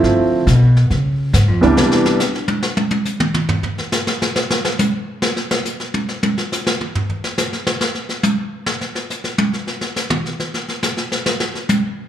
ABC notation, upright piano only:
X:1
M:4/4
L:1/8
Q:"Swing" 1/4=139
K:C
V:1 name="Upright piano"
[F,A,CE]2 z4 z [C,,E,G,_CD]- | [C,,E,G,_CD]2 z6 | z8 | z8 |
z8 | z8 | z8 |]